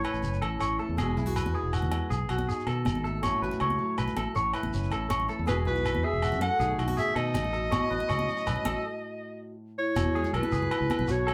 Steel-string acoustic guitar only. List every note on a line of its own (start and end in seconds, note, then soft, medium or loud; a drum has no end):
0.00 0.98 A2 medium
0.00 muted steel-string acoustic guitar stroke medium
0.22 0.95 C#4 medium
0.42 0.96 E3 medium
0.79 0.96 A3 soft
0.97 2.10 E2 medium
0.97 1.54 E3 medium
0.97 1.92 G#3 medium
0.97 1.35 B3 medium
0.97 1.17 F#4 medium
1.17 1.27 E4 medium
1.27 2.11 F#4 medium
1.36 2.48 B3 medium
1.55 2.09 E3 medium
1.93 2.09 G#3 soft
2.11 muted steel-string acoustic guitar stroke medium
2.30 3.21 F#4 medium
2.49 3.21 D#4 medium
2.67 3.21 D#3 medium
3.05 3.21 A3 medium
3.23 4.34 A2 medium
3.23 3.77 F#3 medium
3.23 4.16 A3 medium
3.23 3.61 C#4 medium
3.23 muted steel-string acoustic guitar stroke medium
3.43 4.34 F#4 medium
3.79 4.33 F#3 medium
4.17 4.33 A3 medium
4.35 5.47 A2 medium
4.55 5.48 E4 medium
4.74 5.46 C#4 medium
4.90 5.45 E3 medium
5.28 5.45 A3 medium
5.46 6.03 E2 medium
5.46 6.57 G#3 medium
5.46 5.84 B3 medium
5.46 5.64 F#4 medium
5.46 muted steel-string acoustic guitar stroke medium
5.65 6.57 F#4 medium
5.85 6.60 B3 medium
6.03 6.22 F#2 medium
6.22 6.41 G#2 medium
6.42 6.59 A2 medium
6.59 7.34 B2 medium
6.59 7.16 D#3 medium
6.59 7.70 A3 medium
6.59 6.97 D#4 medium
6.59 6.79 F#4 medium
6.80 6.88 E4 medium
6.88 7.72 F#4 soft
6.98 7.70 D#4 medium
7.17 7.35 D#3 medium
7.36 7.53 C#3 medium
7.54 7.71 B2 medium
7.71 10.89 A2 medium
7.91 8.82 F#4 medium
8.10 8.82 C#4 medium
8.29 8.82 F#3 medium
8.67 8.83 A3 soft
9.95 10.52 E2 medium
9.95 11.06 F#4 medium
10.16 11.06 G#3 medium
10.35 11.06 E3 medium
10.52 10.71 F#2 medium
10.72 10.90 G#2 medium
10.90 11.08 A2 medium
11.09 11.34 B2 medium
11.09 11.34 F#4 medium
11.29 11.34 A3 medium